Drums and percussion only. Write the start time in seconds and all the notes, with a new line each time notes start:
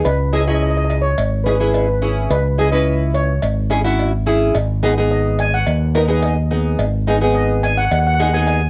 0.05 cowbell
0.90 cowbell
1.18 cowbell
1.47 cowbell
1.74 cowbell
2.31 cowbell
3.15 cowbell
3.42 cowbell
3.71 cowbell
3.99 cowbell
4.55 cowbell
5.39 cowbell
5.67 cowbell
5.95 cowbell
6.23 cowbell
6.79 cowbell
7.64 cowbell
7.91 cowbell
8.20 cowbell
8.47 cowbell